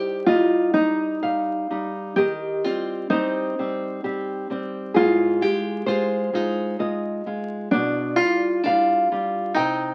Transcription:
Already playing: G3 D#4 G4 C5
0.26 G3 D#4 F4 D#5
0.74 G3 D#4
1.23 G3 D#4 F5
1.70 G3 D#4
2.16 D#3 G4 D#5
2.64 G3 C4 F4
3.10 G3 C4 D#4 C5
3.59 G3 C4
4.04 G3 C4 G4
4.50 G3 C4
4.94 G#2 F4 G#4
5.41 G#3 F4 G4
5.86 G#3 F4 C5
6.33 G#3 D#4 F4
6.79 G#3 F4 D#5
7.26 G#3 F4
7.71 B2 D4 D5
8.16 G3 F4
8.20 F4
8.63 G3 D4 F4 F5
9.12 G3 F4
9.54 C3 D#4 G5

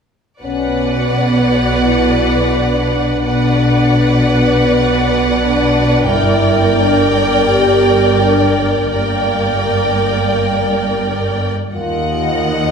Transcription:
0.42 B1 B2 C#4 B4 D5 F#5
1.14 B3
1.83 E4
2.54 D4
3.25 B1 B2 D4 B4 D5 F#5
4.67 B3
5.38 D4
6.08 G1 G2 E4 A#4 D5 G5
6.79 D4
7.48 G4
8.19 D4
8.91 G1 G2 A#3 A#4 D5 G5
11.74 D#2 F4 A#4 D#5 F#5
12.46 D#4

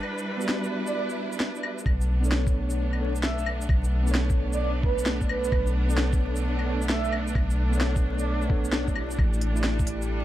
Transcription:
Already playing: G3 D4 B4
0.03 E4, claves
0.18 shaker
0.37 B3 F#4
0.41 G4 D5, shaker
0.49 snare
0.64 shaker
0.86 D5, shaker
0.94 D5
1.10 shaker
1.32 shaker
1.40 snare
1.55 shaker
1.63 claves
1.78 shaker
1.86 B1 A3 B3 D4, kick, claves
2.01 shaker
2.20 B3 D4
2.24 A4 C#5, shaker
2.32 snare
2.47 kick, shaker
2.70 shaker
2.93 claves
2.99 B3 D4 A4
3.03 C#5
3.16 shaker
3.23 E5, snare
3.39 shaker
3.46 claves
3.61 shaker
3.69 B1, kick, claves
3.84 shaker
4.03 B3 D4
4.07 A4, shaker
4.11 C#5, snare
4.30 kick, shaker
4.53 D5, shaker
4.61 D5
4.83 B4, kick
4.98 shaker
5.06 snare
5.21 kick, shaker
5.29 B4, claves
5.44 shaker
5.52 B1, kick, claves
5.67 shaker
5.86 B3 D4, shaker
5.92 A4 C#5
5.98 snare
6.13 kick, shaker
6.36 shaker
6.59 claves
6.65 B3 D4 A4 C#5
6.82 shaker
6.89 E5, snare
7.05 shaker
7.12 claves
7.27 shaker
7.35 B1, kick, claves
7.50 shaker
7.70 B3 D4, shaker
7.75 A4 C#5
7.81 snare
7.96 kick, shaker
8.19 D5, shaker
8.27 D5
8.42 shaker
8.48 B3 D4 A4, kick
8.52 C#5
8.65 shaker
8.73 snare
8.88 A3, kick, shaker
8.94 E4 G4, claves
9.00 D5
9.11 shaker
9.19 A1 G3, kick, claves
9.34 shaker
9.41 open hi-hat
9.53 A3 E4, shaker
9.58 G4 D5
9.64 snare
9.79 kick, shaker
9.87 open hi-hat
10.02 shaker

